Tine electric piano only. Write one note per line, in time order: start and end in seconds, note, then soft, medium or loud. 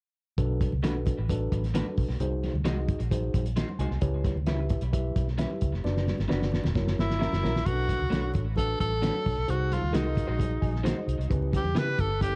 0.38 1.03 B2 medium
0.38 0.71 D4 medium
0.38 0.72 F#4 medium
0.38 0.72 A4 medium
0.38 0.72 B4 medium
0.84 1.17 D4 medium
0.84 1.17 F#4 medium
0.84 1.17 A4 medium
0.84 1.17 B4 medium
1.29 1.63 D4 medium
1.29 1.63 F#4 medium
1.29 1.63 A4 medium
1.29 1.63 B4 medium
1.75 2.08 D4 medium
1.75 2.08 F#4 medium
1.75 2.08 A4 medium
1.75 2.08 B4 medium
2.20 2.85 C3 medium
2.20 2.54 D#4 medium
2.20 2.54 F#4 medium
2.20 2.54 G#4 medium
2.20 2.54 C5 medium
2.66 2.99 D#4 medium
2.66 2.99 F#4 medium
2.66 2.99 G#4 medium
2.66 2.99 D#5 medium
3.11 3.45 D#4 medium
3.11 3.45 F#4 medium
3.11 3.45 G#4 medium
3.11 3.45 C5 medium
3.56 3.78 C6 medium
3.79 4.23 G#5 medium
4.01 4.66 C#3 medium
4.01 4.35 E4 medium
4.01 4.35 G4 medium
4.01 4.35 B4 medium
4.01 4.35 C#5 medium
4.47 4.81 E4 medium
4.47 4.81 G4 medium
4.47 4.81 B4 medium
4.47 4.81 E5 medium
4.93 5.26 E4 medium
4.93 5.26 G4 medium
4.93 5.26 B4 medium
4.93 5.26 E5 medium
5.39 5.72 E4 medium
5.39 5.72 G4 medium
5.39 5.72 B4 medium
5.39 5.72 E5 medium
5.84 6.18 D4 medium
5.84 6.17 F#4 medium
5.84 6.18 B4 medium
5.84 6.18 D5 medium
6.29 6.63 D4 medium
6.29 6.63 F#4 medium
6.29 6.63 B4 medium
6.29 6.63 D5 medium
6.76 7.09 E4 medium
6.76 7.09 F#4 medium
6.76 7.09 A#4 medium
6.76 7.09 C#5 medium
7.21 7.54 E4 medium
7.21 7.54 F#4 medium
7.21 7.54 A#4 medium
7.21 7.55 E5 medium
7.67 8.31 B2 medium
7.67 7.72 C#4 medium
7.67 8.00 F#4 medium
7.67 8.01 A4 medium
7.67 8.00 B4 medium
7.73 8.03 D4 medium
8.12 8.45 D4 medium
8.12 8.45 F#4 medium
8.12 8.45 A4 medium
8.12 8.45 C#5 medium
8.56 8.90 D4 medium
8.56 8.90 F#4 medium
8.56 8.91 A4 medium
8.56 8.90 B4 medium
9.02 9.36 D4 medium
9.02 9.36 F#4 medium
9.02 9.36 A4 medium
9.02 9.36 C#5 medium
9.48 10.12 C3 medium
9.48 9.81 D#4 medium
9.48 9.82 F#4 medium
9.48 9.82 G#4 medium
9.48 9.81 C5 medium
9.92 10.26 D#4 medium
9.92 10.27 F#4 medium
9.92 10.27 G#4 medium
9.92 10.27 A#4 medium
10.38 10.72 D#4 medium
10.38 10.72 F#4 medium
10.38 10.72 G#4 medium
10.38 10.72 D#5 medium
10.62 10.83 G#5 medium
10.84 11.18 D#4 medium
10.84 11.18 F#4 medium
10.84 11.18 G#4 medium
10.84 11.18 C5 medium
10.84 11.27 D#5 medium
11.30 11.94 C#3 medium
11.30 11.63 C#4 medium
11.30 11.63 E4 medium
11.30 11.63 G4 medium
11.30 11.63 B4 medium
11.75 12.08 C#4 medium
11.75 12.09 E4 medium
11.75 12.08 G4 medium
11.75 11.81 A#4 medium
11.81 12.11 B4 medium
12.21 12.35 C#4 medium
12.21 12.35 E4 medium
12.21 12.35 G4 medium
12.21 12.35 A4 medium